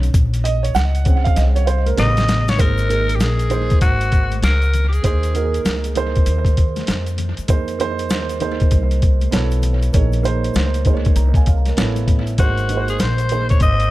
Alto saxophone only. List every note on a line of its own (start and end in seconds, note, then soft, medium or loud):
2.00 2.51 D#5 loud
2.49 2.62 C#5 loud
2.60 3.17 A#4 loud
3.15 3.22 G4 medium
3.21 3.81 G#4 medium
3.81 4.39 F#4 medium
4.44 4.85 A#4 medium
4.89 4.95 G4 medium
4.94 5.04 G#4 medium
5.05 5.62 G#4 medium
12.39 12.85 F#4 medium
12.90 13.02 G#4 medium
13.01 13.50 C5 medium
13.50 13.60 C#5 medium
13.62 13.91 D#5 loud